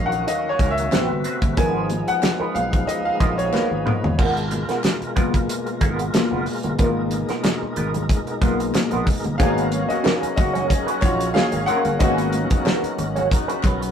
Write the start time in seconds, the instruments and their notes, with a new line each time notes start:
Already playing: fretless electric bass A#1, tonewheel organ D#3 A#3 C#4 F#4, grand piano F#3 C#4 C#5 D#5 F5
0.06 grand piano F#5
0.12 muted clean electric guitar stroke, closed hi-hat
0.27 grand piano D#5, muted clean electric guitar stroke, closed hi-hat
0.49 grand piano C#5
0.59 fretless electric bass C#2, clean electric guitar C#4 F#4 A#4, kick, closed hi-hat, low conga
0.71 grand piano E5
0.77 muted clean electric guitar stroke, closed hi-hat
0.91 fretless electric bass A1, tonewheel organ C3 A3 B4, grand piano B3 C4 F#4, clean electric guitar C4 F#4 B4, snare, clap, closed hi-hat, high conga
1.10 fretless electric bass G1, muted clean electric guitar stroke
1.24 clean electric guitar C4 F#4 B4, closed hi-hat
1.42 fretless electric bass G1, muted clean electric guitar stroke, kick, closed hi-hat, high conga
1.57 fretless electric bass G#1, tonewheel organ F3 G#3 B3 D#4, grand piano F3 B3 A#4 G#5, clean electric guitar B3 F4 A#4, kick, closed hi-hat, muted conga
1.90 closed hi-hat, muted conga
2.07 grand piano F#5, muted clean electric guitar stroke, muted fretless electric bass stroke, closed hi-hat
2.22 muted clean electric guitar stroke, snare, clap, closed hi-hat, high conga
2.40 clean electric guitar B3 F4 A#4, muted fretless electric bass stroke
2.55 fretless electric bass B1, grand piano F5, muted clean electric guitar stroke, closed hi-hat, muted conga
2.72 muted clean electric guitar stroke, kick, closed hi-hat
2.87 grand piano D#5, muted clean electric guitar stroke, closed hi-hat
3.05 grand piano F5
3.20 fretless electric bass A#1, clean electric guitar B3 F4 A#4, grand piano D#5, kick, closed hi-hat, low conga
3.38 grand piano C#5, muted clean electric guitar stroke, closed hi-hat
3.52 clean electric guitar B3 F4 A#4, grand piano B4, snare, clap, high conga
3.71 fretless electric bass G#1, muted clean electric guitar stroke
3.86 clean electric guitar B3 F4 A#4, mid tom, high conga
4.03 fretless electric bass G1, muted clean electric guitar stroke, floor tom, high conga
4.18 fretless electric bass G#1, tonewheel organ B2 G#3 F4 A#4, clean electric guitar B3 F4 A#4, kick, crash, muted conga
4.37 closed hi-hat
4.51 muted clean electric guitar stroke, closed hi-hat, muted conga
4.69 clean electric guitar B3 F4 A#4, muted fretless electric bass stroke, snare, closed hi-hat
4.84 snare, clap, closed hi-hat, high conga
5.01 muted clean electric guitar stroke, muted fretless electric bass stroke, closed hi-hat
5.16 fretless electric bass F#1, grand piano A#3 B3 F4, clean electric guitar B3 F4 A#4, kick, closed hi-hat, muted conga
5.34 muted clean electric guitar stroke, kick, closed hi-hat
5.49 closed hi-hat
5.66 muted clean electric guitar stroke, closed hi-hat
5.81 fretless electric bass G#1, clean electric guitar B3 F4 A#4, kick, closed hi-hat, muted conga, low conga
5.99 muted clean electric guitar stroke, closed hi-hat
6.14 grand piano A#3 B3 F4, muted fretless electric bass stroke, muted clean electric guitar stroke, snare, clap, closed hi-hat, high conga
6.31 fretless electric bass F#1, clean electric guitar B3 F4 A#4
6.46 muted clean electric guitar stroke, open hi-hat
6.63 fretless electric bass G1, muted clean electric guitar stroke, closed hi-hat, high conga
6.79 fretless electric bass G#1, grand piano A#3 B3 F4, clean electric guitar B3 F4 A#4, tonewheel organ D#4, kick, closed hi-hat, muted conga
7.11 muted clean electric guitar stroke, closed hi-hat, muted conga
7.29 clean electric guitar B3 F4 A#4, muted fretless electric bass stroke, snare, closed hi-hat
7.44 muted clean electric guitar stroke, snare, clap, closed hi-hat, high conga
7.62 muted clean electric guitar stroke, muted fretless electric bass stroke
7.76 fretless electric bass G#1, clean electric guitar B3 F4 A#4, closed hi-hat, muted conga
7.94 muted clean electric guitar stroke, closed hi-hat, low conga
8.09 kick, closed hi-hat
8.27 muted clean electric guitar stroke, closed hi-hat
8.42 fretless electric bass B1, grand piano A#3 B3 F4, clean electric guitar B3 F4 A#4, kick, closed hi-hat, low conga
8.60 muted clean electric guitar stroke, closed hi-hat
8.74 muted clean electric guitar stroke, snare, clap, closed hi-hat, high conga
8.91 fretless electric bass A#1, clean electric guitar B3 F4 A#4, closed hi-hat
9.07 muted clean electric guitar stroke, kick, open hi-hat
9.24 fretless electric bass G1, muted clean electric guitar stroke, closed hi-hat, high conga
9.38 fretless electric bass G#1, tonewheel organ C#3 F#3 C#4 A#4, horn section D#3 B3 D#4, grand piano A#3 B3 C#4 F#4 G#4 F5, clean electric guitar C#4 F#4 B4, kick, closed hi-hat, muted conga
9.58 closed hi-hat
9.72 horn section F#3 A#3 C#4, closed hi-hat, muted conga
9.89 grand piano F#4 D#5, muted clean electric guitar stroke, muted fretless electric bass stroke, closed hi-hat
10.04 horn section D#3 B3 D#4, clean electric guitar C#4 F#4 B4, snare, clap, high conga
10.23 muted fretless electric bass stroke, closed hi-hat
10.36 fretless electric bass F#1, horn section C#4 D#4 F#4, grand piano F#4 D#5, muted clean electric guitar stroke, kick, closed hi-hat, muted conga
10.54 clean electric guitar C#4 F#4 C#5, closed hi-hat, low conga
10.69 horn section C#4 D#4 G#4, muted clean electric guitar stroke, kick, closed hi-hat
10.87 clean electric guitar C#4 F#4 B4, closed hi-hat
11.01 fretless electric bass A#1, horn section C#4 D#4 F#4, grand piano F4 C#5, muted clean electric guitar stroke, kick, clap, closed hi-hat, low conga
11.19 muted clean electric guitar stroke, closed hi-hat
11.34 horn section C#4 D#4 G#4, grand piano G#4 F5, muted clean electric guitar stroke, snare, clap, high conga
11.52 fretless electric bass G#1, muted clean electric guitar stroke, closed hi-hat
11.66 clean electric guitar C#4 F#4 B4, grand piano A#4 F#5, closed hi-hat, high conga
11.85 fretless electric bass G1, muted clean electric guitar stroke, closed hi-hat, high conga
11.99 fretless electric bass G#1, grand piano A#3 B3 C#4 F#4 D#5, clean electric guitar C#4 F#4 B4, horn section C#4 D#4 F#4, kick, closed hi-hat, muted conga
12.18 closed hi-hat
12.33 horn section D#3 B3 D#4, closed hi-hat, muted conga
12.50 muted clean electric guitar stroke, kick, closed hi-hat
12.65 clean electric guitar C#4 F#4 B4, snare, clap, high conga
12.83 muted fretless electric bass stroke, closed hi-hat
12.98 fretless electric bass G#1, muted clean electric guitar stroke, closed hi-hat, muted conga
13.16 clean electric guitar C#4 F#4 C#5, closed hi-hat, low conga
13.31 horn section D#3 B3 D#4, muted clean electric guitar stroke, kick, closed hi-hat
13.48 clean electric guitar C#4 F#4 B4, closed hi-hat
13.63 fretless electric bass B1, horn section D#3 F#3 B3, muted clean electric guitar stroke, kick, clap, closed hi-hat, low conga
13.81 muted clean electric guitar stroke, closed hi-hat